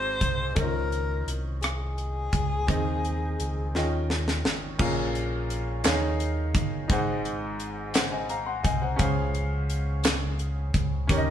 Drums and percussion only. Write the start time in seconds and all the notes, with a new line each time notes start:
0.21 kick, closed hi-hat
0.56 kick, closed hi-hat
0.92 closed hi-hat
1.28 closed hi-hat
1.63 cross-stick, closed hi-hat
1.98 closed hi-hat
2.33 kick, closed hi-hat
2.68 kick, closed hi-hat
3.05 closed hi-hat
3.40 closed hi-hat
3.75 snare
4.10 snare
4.28 snare
4.45 snare
4.79 kick, crash
5.15 closed hi-hat
5.50 closed hi-hat
5.84 snare, clap, closed hi-hat
6.20 closed hi-hat
6.54 kick, closed hi-hat
6.90 kick, closed hi-hat
7.25 closed hi-hat
7.60 closed hi-hat
7.94 snare, clap, closed hi-hat
8.29 closed hi-hat
8.64 kick, closed hi-hat
8.99 kick, closed hi-hat
9.35 closed hi-hat
9.70 closed hi-hat
10.04 snare, clap, closed hi-hat
10.39 closed hi-hat
10.74 kick, closed hi-hat
11.09 kick, closed hi-hat